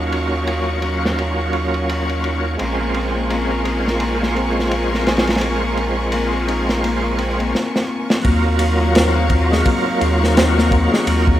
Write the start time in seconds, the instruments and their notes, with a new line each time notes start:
Already playing: sub bass D#2, tonewheel organ F#3 A#3 C#4 F4, string section F#3 D#4 F5 C#6, synth drone C#4
0.12 ride
0.47 ride
0.81 tonewheel organ F#3 A#3 C#4, ride
0.86 tonewheel organ F4
1.05 snare
1.19 ride
1.53 ride
1.74 ride
1.89 ride
2.09 ride
2.24 ride
2.57 sub bass A#1, tonewheel organ G#3 C4, harp A#3, string section F4 A#4 G#5 C#6, ride
2.62 tonewheel organ F4
2.80 harp A#3
2.94 harp C4, ride
3.16 harp A#3
3.30 harp A#3, ride
3.51 harp A#4
3.63 tonewheel organ G#3 C4, harp D#4, ride
3.68 tonewheel organ F4
3.86 harp A#4, snare
4.00 harp A#3, ride
4.21 harp A#3, snare
4.36 harp C4, ride
4.57 harp A#3, snare
4.71 harp A#3, ride
4.93 harp A#4, snare
5.07 harp D#4, snare, ride
5.17 snare, ride
5.27 harp A#4, snare, ride
5.35 snare, ride
5.40 tonewheel organ G#3 C4, harp A#3, ride
5.45 tonewheel organ F4
5.63 harp A#3
5.77 harp C4, ride
5.98 harp A#3
6.12 harp A#3, ride
6.33 harp A#4
6.46 tonewheel organ G#3 C4, harp D#4, ride
6.50 tonewheel organ F4
6.69 harp A#4, snare
6.83 harp A#3, ride
7.04 harp A#3
7.18 harp C4, ride
7.40 harp A#3, ride
7.55 snare
7.76 snare
8.10 snare
8.23 sub bass D#2, tonewheel organ F#3 A#3, string section F#3 D#4 F5 C#6, harp A#3, kick, ride
8.27 tonewheel organ F4
8.46 harp A#3
8.59 harp F4, ride
8.81 harp A#3
8.94 harp C4, snare, ride
9.15 harp A#3
9.27 tonewheel organ F#3 A#3, harp A#3, kick, ride
9.32 tonewheel organ F4
9.51 harp G#3, snare
9.65 harp A#3, kick, ride
9.87 harp A#3
10.01 sub bass D#2, harp F4, ride
10.21 harp A#3, snare
10.36 harp C4, snare, ride
10.56 harp A#3, snare
10.71 harp A#3, kick, ride
10.91 harp G#3, snare
11.05 sub bass D#2, tonewheel organ F#3 A#3, harp A#3, ride
11.10 tonewheel organ F4
11.26 harp A#3, kick